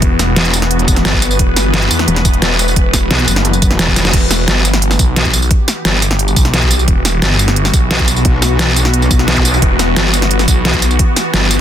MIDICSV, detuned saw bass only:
0, 0, Header, 1, 2, 480
1, 0, Start_track
1, 0, Key_signature, 1, "minor"
1, 0, Tempo, 342857
1, 29, Time_signature, 4, 2, 24, 8
1, 16251, End_track
2, 0, Start_track
2, 0, Title_t, "Detuned saw bass"
2, 0, Program_c, 0, 39
2, 0, Note_on_c, 0, 28, 104
2, 491, Note_off_c, 0, 28, 0
2, 1470, Note_on_c, 0, 31, 99
2, 1931, Note_off_c, 0, 31, 0
2, 1950, Note_on_c, 0, 28, 96
2, 2171, Note_off_c, 0, 28, 0
2, 2191, Note_on_c, 0, 31, 93
2, 2651, Note_off_c, 0, 31, 0
2, 2671, Note_on_c, 0, 40, 102
2, 2891, Note_off_c, 0, 40, 0
2, 3151, Note_on_c, 0, 28, 103
2, 4331, Note_off_c, 0, 28, 0
2, 5790, Note_on_c, 0, 28, 101
2, 6251, Note_off_c, 0, 28, 0
2, 6270, Note_on_c, 0, 31, 97
2, 6971, Note_off_c, 0, 31, 0
2, 6990, Note_on_c, 0, 35, 103
2, 7691, Note_off_c, 0, 35, 0
2, 8191, Note_on_c, 0, 31, 95
2, 8891, Note_off_c, 0, 31, 0
2, 8910, Note_on_c, 0, 35, 99
2, 9611, Note_off_c, 0, 35, 0
2, 9630, Note_on_c, 0, 28, 100
2, 10091, Note_off_c, 0, 28, 0
2, 10110, Note_on_c, 0, 31, 95
2, 10811, Note_off_c, 0, 31, 0
2, 10831, Note_on_c, 0, 35, 103
2, 11531, Note_off_c, 0, 35, 0
2, 13471, Note_on_c, 0, 28, 98
2, 13931, Note_off_c, 0, 28, 0
2, 13950, Note_on_c, 0, 31, 98
2, 14651, Note_off_c, 0, 31, 0
2, 14670, Note_on_c, 0, 35, 105
2, 15371, Note_off_c, 0, 35, 0
2, 15871, Note_on_c, 0, 31, 97
2, 16251, Note_off_c, 0, 31, 0
2, 16251, End_track
0, 0, End_of_file